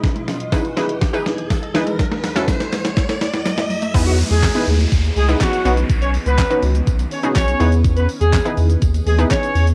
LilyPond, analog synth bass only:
\new Staff \with { instrumentName = "Analog synth bass" } { \clef bass \time 4/4 \key e \major \tempo 4 = 123 r1 | r1 | e,8. e,8 r16 dis,8 dis,8 cis,8 r8 b,,8 | b,,8. cis,8 r16 cis,8 b,,8 r8 b,,8 e,8~ |
e,8. e,8 r16 e,8 dis,8 dis,8 r8 e,8 | }